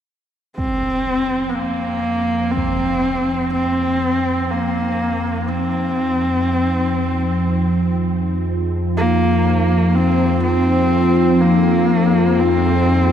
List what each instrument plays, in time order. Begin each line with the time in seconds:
0.57 synth drone F2 F3, horsehead fiddle C4, impact
1.49 horsehead fiddle B3
1.55 horsehead fiddle A#3
2.45 ambient pad F4
2.51 horsehead fiddle C4
2.56 impact
3.14 ambient pad G#4
3.53 horsehead fiddle C4
4.50 horsehead fiddle A#3
5.49 horsehead fiddle C4
8.97 horsehead fiddle A#3
9.96 horsehead fiddle C4
10.43 horsehead fiddle C4
11.41 horsehead fiddle A#3
12.39 horsehead fiddle C4